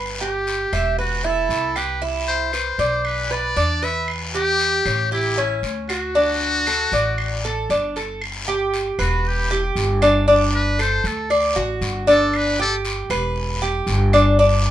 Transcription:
Already playing: upright bass G1, cuban tres B4
0.21 cuban tres G4, muted trumpet G4
0.47 short guiro
0.73 upright bass E1, cuban tres E5, short guiro, claves
0.98 muted trumpet F#4, cuban tres B4, long guiro
1.24 cuban tres E4, muted trumpet A4
1.49 upright bass C2, short guiro
1.76 cuban tres G4, muted trumpet B4, short guiro, claves
2.02 cuban tres E4, long guiro
2.28 muted trumpet C5
2.53 cuban tres B4, short guiro, claves
2.78 upright bass B1, cuban tres D5, short guiro
3.05 muted trumpet B4, long guiro, claves
3.31 cuban tres B4, muted trumpet D5
3.56 upright bass E2, cuban tres D4, short guiro
3.82 cuban tres B4, muted trumpet E5, short guiro
4.08 long guiro, claves
4.34 muted trumpet G4, cuban tres G4
4.59 short guiro
4.85 upright bass A1, cuban tres C#5, short guiro, claves
5.11 muted trumpet E4, cuban tres G4, long guiro
5.38 cuban tres C#4
5.63 upright bass D2, short guiro
5.89 muted trumpet F#4, cuban tres F#4, short guiro, claves
6.15 cuban tres D4, long guiro
6.66 cuban tres A4, short guiro, claves
6.92 upright bass A1, cuban tres D5, short guiro
7.18 long guiro, claves
7.45 cuban tres A4
7.70 upright bass G1, cuban tres D4, short guiro
7.96 cuban tres A4, short guiro
8.22 long guiro, claves
8.48 cuban tres G4
8.74 short guiro
8.99 upright bass E1, muted trumpet F#4, cuban tres B4, short guiro, claves
9.25 muted trumpet G4, long guiro
9.51 muted trumpet E4, cuban tres G4
9.76 upright bass G1, short guiro
10.02 cuban tres D4, short guiro, claves
10.28 cuban tres D4, long guiro
10.55 muted trumpet B4
10.79 cuban tres A4, muted trumpet C5, short guiro, claves
11.04 upright bass D2, muted trumpet A4, short guiro
11.30 cuban tres D5, long guiro, claves
11.56 upright bass A1, cuban tres F#4
11.81 upright bass G1, short guiro
12.07 cuban tres D4, muted trumpet A4, short guiro
12.33 muted trumpet B4, long guiro, claves
12.60 cuban tres G4, muted trumpet A4
12.85 short guiro
13.10 upright bass E1, cuban tres B4, short guiro, claves
13.36 long guiro
13.62 cuban tres G4
13.87 upright bass G1, short guiro
14.13 cuban tres D4, short guiro, claves
14.39 cuban tres D4, long guiro

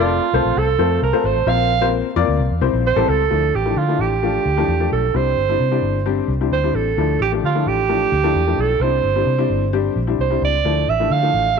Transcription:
Already playing: fingered electric bass F1, alto saxophone F4
0.00 upright piano A3 C4 F4 A4 D5
0.33 fingered electric bass C2, upright piano A3 C4 F4 A4 C5
0.45 fingered electric bass A#1
0.56 fingered electric bass C2, alto saxophone A4
0.79 fingered electric bass F2, upright piano A3 C4 F4 A4 C5
1.02 fingered electric bass C2, alto saxophone A#4
1.13 upright piano A3 C4 F4 A4 C5
1.24 fingered electric bass G#1, alto saxophone C5
1.35 fingered electric bass A1
1.47 fingered electric bass A#1, upright piano A#3 C4 F4 A#4 C5, alto saxophone F5
1.82 upright piano A#3 C4 F4 A#4 C5
2.16 fingered electric bass F2, upright piano A#3 C4 F4 A#4 D5
2.28 fingered electric bass D2
2.39 fingered electric bass C2
2.50 fingered electric bass E2
2.61 fingered electric bass C2, upright piano G3 C4 E4 G4 C5
2.73 fingered electric bass A#1
2.87 alto saxophone C5
2.96 fingered electric bass A1, upright piano G3 C4 E4 G4 A4
3.08 fingered electric bass C#2, alto saxophone A4
3.30 fingered electric bass D2, upright piano F3 A3 D4 E4
3.54 fingered electric bass A1, alto saxophone G4
3.65 upright piano F3 A3 D4 E4
3.76 fingered electric bass D3, alto saxophone F4
3.89 upright piano F3 A3 D4 E4
3.99 fingered electric bass A1, alto saxophone G4
4.23 upright piano F3 A3 D4 F4
4.46 fingered electric bass D2
4.57 upright piano F3 A3 D4 E4
4.68 fingered electric bass E2
4.80 upright piano F3 A3 D4 G4
4.92 fingered electric bass B1, alto saxophone A4
5.14 fingered electric bass C2, upright piano G3 C4 D4 E4, alto saxophone C5
5.36 fingered electric bass G1
5.49 upright piano G3 C4 D4 E4
5.60 fingered electric bass C3
5.71 upright piano G3 C4 D4 E4
5.82 fingered electric bass G1
6.06 upright piano G3 C4 D4 G4
6.28 fingered electric bass C2
6.41 upright piano G3 C4 D4 E4
6.51 fingered electric bass D2, alto saxophone C5
6.64 upright piano G3 C4 D4 E4
6.73 fingered electric bass A1, alto saxophone A4
6.97 fingered electric bass D2, upright piano F3 A3 D4 E4
7.19 fingered electric bass A1, alto saxophone G4
7.32 upright piano F3 A3 D4 G4
7.43 fingered electric bass D3, alto saxophone F4
7.55 upright piano F3 A3 D4 E4
7.66 fingered electric bass A1, alto saxophone G4
7.89 upright piano F3 A3 D4 E4
8.12 fingered electric bass D2
8.24 upright piano F3 A3 D4 E4
8.35 fingered electric bass E2
8.47 upright piano F3 A3 D4 E4
8.58 fingered electric bass B1, alto saxophone A4
8.80 fingered electric bass C2, upright piano G3 C4 D4 E4, alto saxophone C5
9.03 fingered electric bass G1
9.15 upright piano G3 C4 D4 E4
9.26 fingered electric bass C3
9.38 upright piano G3 C4 D4 E4
9.50 fingered electric bass G1
9.73 upright piano G3 C4 D4 G4
9.96 fingered electric bass A#1
10.07 upright piano G3 C4 D4 E4
10.19 fingered electric bass C2, alto saxophone C5
10.30 upright piano G3 C4 D4 E4
10.42 fingered electric bass C#2, alto saxophone D5
10.65 fingered electric bass D2, upright piano F3 A3 D4 E4
10.88 fingered electric bass A1, alto saxophone E5
11.00 upright piano F3 A3 D4 E4
11.10 fingered electric bass D3, alto saxophone F5
11.22 upright piano F3 A3 D4 E4
11.34 fingered electric bass A1

